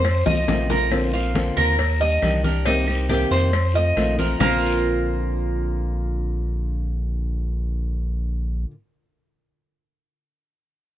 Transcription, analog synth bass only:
Already playing: F2
0.26 C2
0.48 A#1
1.57 D#2
2.23 C2
3.31 F2
3.97 A#1
4.40 A#1

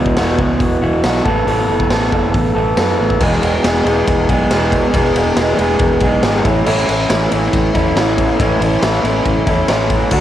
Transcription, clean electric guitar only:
Already playing: E2 B2 E3 B3 E4 F#4
0.16 E2 B2 E3 B3 E4 F#4
0.38 E3 B3 E4 F#4
0.82 E3 B3 E4 F#4
1.04 E3 B3 E4 F#4
1.25 A2 E3 A3 B3 A4
1.46 A2 E3 A3 B3 A4
1.68 A3 B3 A4
1.90 A2 E3 A3 B3 A4
2.12 A3 B3 A4
2.55 A3 B3 A4
2.77 E3 A3 B3 A4
3.20 E2 B2 E3 G#3 B3 G#4
3.42 E3 G#3 B3 G#4
3.63 E3 G#3 B3 G#4
3.85 E3 G#3 B3 G#4
4.29 E3 G#3 B3 G#4
4.51 E2 B2 E3 G#3 B3 G#4
4.94 E2 B2 E3 G#3 B3 G#4
5.16 E3 G#3 B3 G#4
5.37 E3 G#3 B3 G#4
5.59 E3 G#3 B3 G#4
6.02 E3 G#3 B3 G#4
6.23 E2 B2 E3 G#3 B3 G#4
6.45 A2 E3 A3 C#4 E4
6.65 A2 E3 A3 C#4 E4
6.87 A3 C#4 E4
7.09 E3 A3 C#4 E4
7.31 A3 C#4 E4
7.74 A3 C#4 E4
7.97 A2 E3 A3 C#4 E4
8.40 A2 E3 A3 C#4 E4
8.61 A3 C#4 E4
8.82 E3 A3 C#4 E4
9.05 A3 C#4 E4
9.47 A3 C#4 E4
9.69 A2 E3 A3 C#4 E4
10.11 D3 A3 D4 F#4

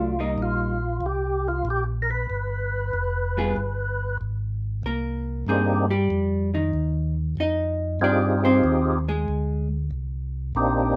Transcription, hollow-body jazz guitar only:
Already playing: F#3 A3 D4
0.19 G3 A#3 D#4
3.37 G3 B3 F4 G#4
4.86 A#3 A#4
5.49 A#3 G#4
5.91 G3 G4
6.55 D#3 D#4
7.40 D#4 D#5
8.04 D4 D5
8.45 C4 C5
9.08 G#3 G#4

